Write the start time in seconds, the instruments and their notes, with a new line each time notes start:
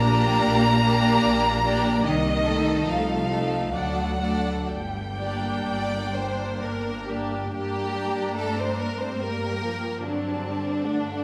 Already playing: double bass section A#1, cello section A#3, violin section A#5
0.04 viola section A#3 D4, violin section G4 D5
0.44 double bass section A#1
0.83 viola section A#3 D4, violin section G4 D5
1.23 double bass section A#1
1.64 viola section A#3 D4, violin section G4 D5
2.04 double bass section C2, cello section D#3, violin section D#5
2.45 viola section A3 D#4, violin section A4
2.87 double bass section C2, cello section F3, violin section F5
3.30 viola section A3 D#4, violin section A4
3.73 double bass section D2, cello section F#3, viola section A3 D4, violin section A4 D5 F#5
4.19 viola section A3 D4, violin section A4 D5
4.68 double bass section G1, cello section G3, violin section G5
5.17 viola section A#3 D4, violin section G4 D5
5.66 double bass section G1, violin section D5
6.13 viola section A#3 D4, violin section C5
6.62 double bass section G1, violin section A#4
7.07 viola section A#3 D4, violin section G4
7.52 double bass section G2, cello section G3, viola section A#3 D4, violin section G4 A#5
8.36 viola section A3, cello section A3, violin section A4
8.58 cello section C4, violin section C5
8.79 cello section A#3, violin section A#4
8.99 cello section C4, violin section C5
9.20 viola section G3 A#3, cello section A#3, violin section A#4 G5
9.62 viola section F3
10.02 cello section D3, viola section F#3 C4, violin section D4 A5
10.46 viola section G3
10.85 viola section A3 D4, violin section F#5